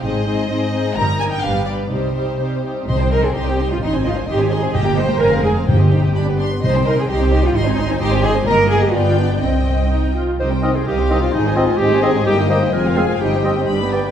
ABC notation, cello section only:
X:1
M:2/4
L:1/16
Q:1/4=128
K:Cm
V:1 name="Cello section"
A,,4 A,,4 | G,,4 G,,4 | C,4 C,4 | c2 B A G3 F |
E2 F2 G2 A2 | G2 c2 B2 A2 | G6 z2 | c2 B A G3 F |
E4 G2 A2 | B2 A G F2 D2 | C6 z2 | C,4 C,4 |
A,,4 A,,4 | G,,4 F,,4 | G,,4 G,,4 |]